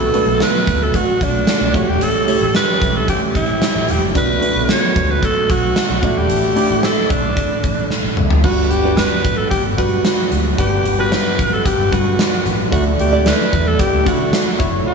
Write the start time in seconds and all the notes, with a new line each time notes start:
Already playing: B2 D3 F#3 A3 B3 D4 F#4 A4 B4
0.14 A3 D4 F#4 B4, closed hi-hat
0.26 B1
0.40 B4, snare, closed hi-hat
0.67 D2, kick, closed hi-hat
0.83 A4
0.94 F#4, kick, closed hi-hat
1.21 B1 D4, kick, closed hi-hat
1.47 snare, closed hi-hat
1.61 B1
1.74 A1 A2 E3 G3 A3 C#4 E4 F#4 G4 C#5, kick, closed hi-hat
1.88 E1 G4
2.01 A1 A4, closed hi-hat
2.27 A3 E4 G4 C#5, closed hi-hat
2.41 A1
2.55 B4, snare, closed hi-hat
2.82 B1, kick, closed hi-hat
2.96 A4
3.08 G4, kick, closed hi-hat
3.35 A1 E4, kick, closed hi-hat
3.62 snare, closed hi-hat
3.75 A1
3.89 E1 G4, closed hi-hat
4.02 F#1
4.15 B1 B2 D3 F#3 A3 B3 D4 F#4 B4, kick, closed hi-hat
4.41 A3 D4 F#4 B4, closed hi-hat
4.56 B1
4.69 C#5, snare, closed hi-hat
4.96 D2, kick, closed hi-hat
5.11 B4
5.23 A4, kick, closed hi-hat
5.50 B1 F#4, kick, closed hi-hat
5.76 snare, closed hi-hat
5.90 B1
6.03 A1 A2 E3 A3 D4 E4 F#4 A4 D5, kick, closed hi-hat
6.16 E1 G4
6.30 A1, closed hi-hat
6.56 A3 D4 E4 D5, closed hi-hat
6.70 A1
6.83 A4, snare, closed hi-hat
7.10 B1 D4, kick, closed hi-hat
7.37 kick, closed hi-hat
7.64 A1, kick, closed hi-hat
7.90 snare
8.04 A1
8.17 C#2, mid tom
8.30 D2, floor tom
8.44 G2 D3 G3 B3 D4 F#4 B4 F#5, kick, crash
8.71 G1 G4, closed hi-hat
8.84 G3 D4 F#4 B4
8.97 B4, snare, closed hi-hat
9.24 A1, kick, closed hi-hat
9.37 A4
9.51 G4, kick, closed hi-hat
9.64 G1
9.77 G2 G3 D4 F#4 B4, kick, closed hi-hat
10.05 snare, closed hi-hat
10.32 D2, closed hi-hat
10.58 G1 G2 G3 D4 G4 B4 F#5, kick, closed hi-hat
10.85 G1, closed hi-hat
10.98 G3 D4 F#4 B4
11.12 snare, closed hi-hat
11.39 A1, kick, closed hi-hat
11.53 A4
11.66 G4, kick, closed hi-hat
11.79 G1
11.92 G2 G3 D4 F#4 B4, kick, closed hi-hat
12.19 snare, closed hi-hat
12.46 A1, closed hi-hat
12.71 D2 D3 E3 A3 D4 E4 F#4 A4 D5, kick, closed hi-hat
12.99 D2 G4, closed hi-hat
13.12 A3 D4 E4 D5
13.26 B4, snare, closed hi-hat
13.53 E2, kick, closed hi-hat
13.67 A4
13.79 G4, kick, closed hi-hat
13.93 D2
14.05 D3 A3 D4 E4 F#4 D5, kick, closed hi-hat
14.33 snare, closed hi-hat
14.59 F#1 C#3 F#3 A3 E4 F#4 C#5, kick, closed hi-hat
14.87 F#4